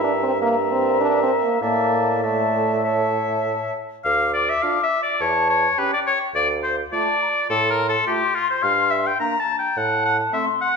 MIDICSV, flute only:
0, 0, Header, 1, 2, 480
1, 0, Start_track
1, 0, Key_signature, -1, "minor"
1, 0, Tempo, 587659
1, 828, Tempo, 607287
1, 1310, Time_signature, 4, 2, 24, 8
1, 3228, Tempo, 574163
1, 6588, Tempo, 563910
1, 8883, End_track
2, 0, Start_track
2, 0, Title_t, "Flute"
2, 0, Program_c, 0, 73
2, 0, Note_on_c, 0, 82, 60
2, 334, Note_off_c, 0, 82, 0
2, 339, Note_on_c, 0, 82, 64
2, 1311, Note_on_c, 0, 81, 56
2, 1322, Note_off_c, 0, 82, 0
2, 1793, Note_off_c, 0, 81, 0
2, 1798, Note_on_c, 0, 81, 57
2, 2269, Note_off_c, 0, 81, 0
2, 2277, Note_on_c, 0, 81, 52
2, 2979, Note_off_c, 0, 81, 0
2, 3229, Note_on_c, 0, 86, 73
2, 4159, Note_off_c, 0, 86, 0
2, 4189, Note_on_c, 0, 81, 77
2, 4674, Note_on_c, 0, 79, 58
2, 4687, Note_off_c, 0, 81, 0
2, 5145, Note_off_c, 0, 79, 0
2, 5150, Note_on_c, 0, 77, 58
2, 5619, Note_off_c, 0, 77, 0
2, 5628, Note_on_c, 0, 81, 54
2, 5864, Note_off_c, 0, 81, 0
2, 5875, Note_on_c, 0, 82, 44
2, 5929, Note_off_c, 0, 82, 0
2, 6106, Note_on_c, 0, 84, 70
2, 7550, Note_on_c, 0, 82, 60
2, 7563, Note_off_c, 0, 84, 0
2, 8039, Note_on_c, 0, 81, 61
2, 8052, Note_off_c, 0, 82, 0
2, 8521, Note_on_c, 0, 84, 67
2, 8534, Note_off_c, 0, 81, 0
2, 8824, Note_off_c, 0, 84, 0
2, 8883, End_track
0, 0, End_of_file